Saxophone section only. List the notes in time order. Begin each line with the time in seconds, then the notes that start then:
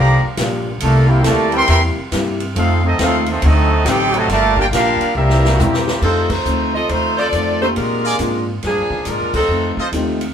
5.54 F#4
5.60 E3 A#3 C4 G4
6.03 F3 C4 D#4 A4
6.31 A3 D#4 F4 C5
6.75 C4 F4 A4 D#5
6.89 A3 D#4 F4 C5
7.18 C4 F4 A4 D5
7.62 A3 D#4 F4 C5
7.77 G#3 D4 F4 A#4
8.67 F3 A#3 D4 G#4
9.08 G#3 D4 F4 A#4
9.35 F3 C4 D#4 A4